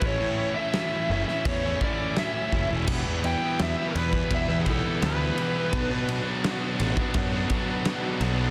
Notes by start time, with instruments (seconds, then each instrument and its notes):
0.01 picked electric bass A1, distorted electric guitar A2 E3 A3 C#4 E4, kick, crash
0.06 lead electric guitar C#5
0.20 picked electric bass A2, overdriven electric guitar A3 C#4 E4
0.37 distorted electric guitar E3 A3 C#4 E4
0.55 distorted electric guitar C#4 E4, lead electric guitar E5
0.59 distorted electric guitar A3
0.73 distorted electric guitar A2 E3 A3 C#4 E4, snare, crash
0.92 distorted electric guitar A3 C#4 E4
1.10 picked electric bass F#1, distorted electric guitar E3 A3 C#4 E4, lead electric guitar E5
1.28 distorted electric guitar A3 C#4 E4, snare
1.45 picked electric bass E2, lead electric guitar C#5, kick, crash
1.65 distorted electric guitar A3 C#4 E4
1.81 distorted electric guitar E3 A3 C#4 E4, lead electric guitar D5, kick
1.99 overdriven electric guitar A3 C#4 E4
2.16 distorted electric guitar A2 E3 A3 C#4 E4, lead electric guitar E5, snare, crash
2.52 picked electric bass F#1, distorted electric guitar E3 A3 C#4 E4, kick
2.69 picked electric bass E1, distorted electric guitar A3 C#4 E4
2.86 picked electric bass E1, distorted electric guitar E2 B2 E3 B3 E4 G4, overdriven electric guitar G3, kick, crash
3.06 picked electric bass E2, overdriven electric guitar G3 B3 E4
3.21 distorted electric guitar E2 B2 E3 B3 E4 G4, ride
3.25 lead electric guitar G5
3.40 distorted electric guitar B3 E4 G4
3.46 overdriven electric guitar G3
3.58 distorted electric guitar E2 B2 E3 B3 E4 G4, picked electric bass E2, overdriven electric guitar G3, snare, ride
3.62 overdriven electric guitar E4, lead electric guitar E5
3.76 distorted electric guitar B3 E4 G4
3.87 lead electric guitar A#4
3.93 distorted electric guitar E2 B2 E3 B3 E4 G4, picked electric bass E2, ride
3.98 overdriven electric guitar G3 B3 E4, lead electric guitar B4
4.12 distorted electric guitar B3 E4 G4, kick
4.18 overdriven electric guitar G3
4.31 distorted electric guitar E2 B2 E3, picked electric bass E2, lead electric guitar E5, kick, ride
4.48 picked electric bass E2, distorted electric guitar B3 E4 G4
4.53 overdriven electric guitar G3
4.60 lead electric guitar G#4
4.65 picked electric bass B1, distorted electric guitar E2 B2 E3 B3 E4 G4, overdriven electric guitar G3, kick, ride
4.70 lead electric guitar A4
4.85 overdriven electric guitar G3 B3 E4
5.01 picked electric bass D2, distorted electric guitar E2 B2 E3 B3 E4 G4, overdriven electric guitar G3, snare, ride
5.06 overdriven electric guitar E4, lead electric guitar B4
5.36 distorted electric guitar E2 B2 E3 B3 E4 G4, ride
5.41 overdriven electric guitar G3 B3 E4
5.55 distorted electric guitar B3 E4 G4
5.59 overdriven electric guitar G3
5.72 picked electric bass B1, distorted electric guitar B2 F#3 B3 D4 F#4, kick, ride
5.90 picked electric bass B2, overdriven electric guitar B3 D4
5.94 overdriven electric guitar F#3
6.08 distorted electric guitar B2 F#3 B3 D4 F#4, ride
6.26 distorted electric guitar B3 D4 F#4
6.30 overdriven electric guitar F#3
6.43 distorted electric guitar B2 F#3 B3 D4 F#4, snare, ride
6.60 distorted electric guitar B3 D4 F#4
6.79 picked electric bass A1, distorted electric guitar B2 F#3 B3 D4 F#4, overdriven electric guitar B2, snare, ride
6.96 distorted electric guitar B3 D4 F#4, kick
7.01 overdriven electric guitar F#3
7.14 picked electric bass F#2, distorted electric guitar B2 F#3 B3, kick, ride
7.31 distorted electric guitar B3 D4 F#4
7.36 overdriven electric guitar F#3
7.48 overdriven electric guitar B2, distorted electric guitar B2 F#3 B3 D4 F#4, kick, ride
7.52 distorted electric guitar F#3 B3, overdriven electric guitar D4
7.69 overdriven electric guitar F#3 B3 D4
7.83 distorted electric guitar B2 F#3 B3 D4 F#4, snare, ride
7.88 distorted electric guitar B2 F#3 B3, overdriven electric guitar B3
8.20 picked electric bass B1, overdriven electric guitar B2, distorted electric guitar B2 F#3 B3 D4 F#4, ride
8.38 distorted electric guitar B3 D4 F#4
8.43 overdriven electric guitar F#3